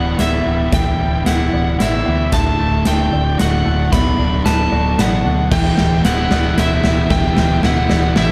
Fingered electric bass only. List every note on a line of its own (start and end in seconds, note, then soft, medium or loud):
0.00 0.14 D1 medium
0.19 0.41 D1 medium
0.46 0.68 D1 medium
0.73 0.95 D1 medium
1.00 1.22 D1 medium
1.27 1.48 D1 medium
1.54 1.75 D1 medium
1.81 2.02 A1 medium
2.07 2.29 D2 medium
2.32 2.55 D1 medium
2.61 2.82 D1 medium
2.87 3.08 D1 medium
3.14 3.35 D1 medium
3.41 3.62 D1 medium
3.67 3.88 D1 medium
3.93 4.15 D1 medium
4.19 4.41 D1 medium
4.45 4.68 D1 medium
4.72 4.94 D1 medium
4.99 5.21 A1 medium
5.26 5.48 D2 medium
5.52 5.74 D1 medium
5.79 6.01 D1 medium
6.05 6.27 D1 medium
6.32 6.54 D1 medium
6.57 6.80 D1 medium
6.84 7.07 D1 medium
7.10 7.33 D1 medium
7.37 7.60 D1 medium
7.63 7.86 D1 medium
7.91 8.13 D1 medium
8.17 8.32 A1 medium